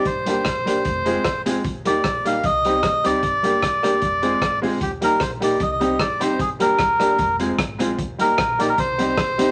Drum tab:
HH |xxxxxxxx|xxxxxxxx|xxxxxxxo|xxxxxxxx|
SD |--r---r-|--r---r-|--rr--r-|--r---r-|
BD |o-o-o-o-|o-o-o-o-|o-o-o-o-|o-o-o-o-|

HH |xxxxxxxx|xxxxxxxx|
SD |--rr--rr|--r---r-|
BD |o-o-o-o-|o-o-o-o-|